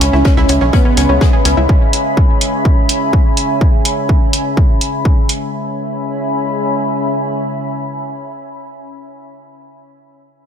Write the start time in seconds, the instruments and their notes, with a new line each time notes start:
Already playing: synth drone C#3 G#3, supersaw synth C#4, ambient pad C#4 C#5 E5 G#5 B5
0.01 analog synth bass C#2, synth arpeggio sound C#4, closed hi-hat
0.13 analog synth bass C#2, synth arpeggio sound E4, snare
0.25 synth arpeggio sound C#4, kick, snare, closed hi-hat
0.37 analog synth bass C#2, synth arpeggio sound E4, snare
0.48 analog synth bass C#2, synth arpeggio sound C#4, closed hi-hat
0.60 analog synth bass B1, synth arpeggio sound C#4, snare
0.73 supersaw synth B3, synth arpeggio sound C#4, kick, closed hi-hat
0.85 synth arpeggio sound C#4
0.97 analog synth bass C#2, synth arpeggio sound C#4, closed hi-hat
1.09 analog synth bass C#2, synth arpeggio sound C#4
1.21 synth arpeggio sound G#4, kick, snare, closed hi-hat
1.33 synth arpeggio sound G#4
1.45 analog synth bass C#2, synth arpeggio sound C#4, snare, closed hi-hat
1.57 analog synth bass C#2, synth arpeggio sound E4
1.69 kick
1.93 closed hi-hat
2.17 kick
2.41 closed hi-hat
2.65 kick
2.89 closed hi-hat
3.13 kick
3.37 closed hi-hat
3.61 kick
3.85 closed hi-hat
4.09 kick
4.33 closed hi-hat
4.57 kick
4.81 closed hi-hat
5.05 kick
5.29 closed hi-hat
5.53 synth drone C#3 G#3, ambient pad C#4 C#5 E5 G#5 B5